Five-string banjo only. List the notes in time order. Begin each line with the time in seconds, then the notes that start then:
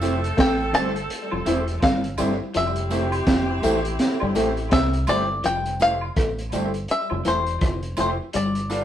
Already playing: F5
0.40 G5
0.75 A5
1.84 F5
2.57 E5
4.73 E5
5.09 D5
5.46 G5
5.82 F5
6.91 E5
7.28 C5
8.00 C5
8.36 D5